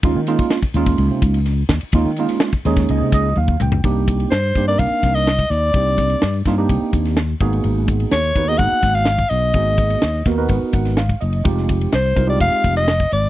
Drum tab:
RD |x-xxx-xxx-xxx-xx|x-xxx-xxx-x-----|x-xxx-x-x-xxx-x-|x-xxx-x-x-xxx-xx|
HH |--p---p---p---p-|--p---p---p---p-|--p---p---p---p-|--p---p---p---p-|
SD |----o-------o-o-|---oo-oo--------|----o-----ooo---|----o-o----oo---|
T1 |----------------|------------o---|----------------|----------------|
T2 |----------------|--------------o-|----------------|----------------|
FT |----------------|---------------o|----------------|----------------|
BD |o--o-o-o--o---o-|o----o-o--o--o--|o-o---o-o-o--o--|o-o---o-o-o---o-|

RD |x-xxx-x-x-xxx-x-|x-xxx-x-x-xxx-xx|x-xxx-x-x-xxx-x-|
HH |--p---p---p---p-|--p---p---p---p-|--p---p---p---p-|
SD |----o-----o-o---|----o-o----oo---|-o--o------oo---|
T1 |----------------|----------------|----------------|
T2 |----------------|----------------|----------------|
FT |----------------|----------------|----------------|
BD |--o---o-o-o--o--|o-o---o-o-o--o--|o-o---o-o-o--o--|